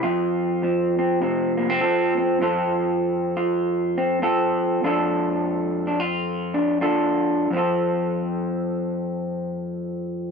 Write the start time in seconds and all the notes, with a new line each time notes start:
0.03 F2 F4
0.63 F3 C4
0.99 C4
1.22 C3 C4
1.57 A#3
1.70 C4
1.81 F3 A4
2.17 C4
2.41 F2 C4 F4 A4
3.37 F4
3.98 C4
4.22 C4 F4 A4
4.84 F2 D4 F4 A4
5.87 D4
6.00 F4
6.54 D4
6.81 D4 F4 A4
7.51 F2 F3 C4
7.56 F4 A4